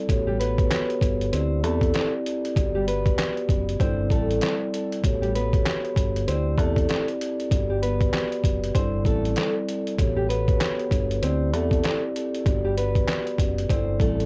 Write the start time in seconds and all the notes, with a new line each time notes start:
0.09 A1 B3 F#4 G4 A4 C#5, kick, closed hi-hat
0.27 G3 G4
0.39 B3 B4, closed hi-hat
0.58 B3 F#4 G4 A4 C#5, kick, closed hi-hat
0.71 snare, clap, closed hi-hat
0.90 closed hi-hat
1.01 G1, kick, closed hi-hat
1.21 closed hi-hat
1.32 D2 C4 E4 G4 C5 D5, closed hi-hat
1.63 E2 A3 C4 E4 G4 A4 D5, closed hi-hat
1.81 kick, closed hi-hat
1.93 C4 E4 D5, snare, clap, closed hi-hat
2.25 C4 E4 G4 D5, closed hi-hat
2.45 closed hi-hat
2.55 G1 B3 F#4 G4 D5, kick, closed hi-hat
2.75 G3 G4
2.88 B3 B4, closed hi-hat
3.04 B3 F#4 G4 D5, kick, closed hi-hat
3.18 snare, clap, closed hi-hat
3.37 closed hi-hat
3.49 F#1, kick, closed hi-hat
3.69 closed hi-hat
3.79 G1 G3 C4 E4 A4 C5 D5, kick, closed hi-hat
4.10 A1 G3 A3 C4 E4 A4 D5, kick, closed hi-hat
4.31 closed hi-hat
4.41 snare, clap, closed hi-hat
4.74 closed hi-hat
4.92 closed hi-hat
5.03 A1 B3 F#4 G4 A4 C#5, kick, closed hi-hat
5.22 G3 G4, closed hi-hat
5.35 B3 B4, closed hi-hat
5.53 B3 F#4 G4 A4 C#5, kick, closed hi-hat
5.66 snare, clap, closed hi-hat
5.85 closed hi-hat
5.96 G1, kick, closed hi-hat
6.16 closed hi-hat
6.27 D2 C4 E4 G4 C5, closed hi-hat
6.58 E2 A3 C4 E4 G4 A4 D5, kick, closed hi-hat
6.76 kick, closed hi-hat
6.88 C4 E4 G4 D5, snare, clap, closed hi-hat
7.08 closed hi-hat
7.20 C4 E4 G4 D5, closed hi-hat
7.40 closed hi-hat
7.50 G1 B3 F#4 G4 D5, kick, closed hi-hat
7.69 G3 G4
7.82 B3 B4, closed hi-hat
7.99 B3 F#4 G4 D5, kick, closed hi-hat
8.13 snare, clap, closed hi-hat
8.32 closed hi-hat
8.44 F#1, kick, closed hi-hat
8.64 closed hi-hat
8.74 G1 G3 C4 E4 A4 C5 D5, kick, closed hi-hat
9.05 A1 G3 A3 C4 E4 A4 D5, kick, closed hi-hat
9.25 closed hi-hat
9.36 snare, clap, closed hi-hat
9.69 closed hi-hat
9.87 closed hi-hat
9.98 A1 B3 F#4 G4 A4 C#5, kick, closed hi-hat
10.16 G3 G4
10.29 B3 B4, closed hi-hat
10.47 B3 F#4 G4 A4 C#5, kick, closed hi-hat
10.61 snare, clap, closed hi-hat
10.79 closed hi-hat
10.91 G1, kick, closed hi-hat
11.11 closed hi-hat
11.22 D2 C4 E4 G4 C5 D5, closed hi-hat
11.53 E2 A3 C4 E4 G4 A4 D5, closed hi-hat
11.71 kick, closed hi-hat
11.83 C4 E4 G4 D5, snare, clap, closed hi-hat
12.14 C4 E4 G4 D5, closed hi-hat
12.35 closed hi-hat
12.45 G1 B3 F#4 G4 D5, kick, closed hi-hat
12.64 G3 G4
12.77 B3 B4, closed hi-hat
12.94 B3 F#4 G4, kick, closed hi-hat
13.08 snare, clap, closed hi-hat
13.27 closed hi-hat
13.38 F#1, kick, closed hi-hat
13.58 closed hi-hat
13.69 G1 G3 C4 E4 A4 C5 D5, kick, closed hi-hat
14.00 A1 G3 A3 C4 E4 A4 D5, kick, closed hi-hat
14.20 closed hi-hat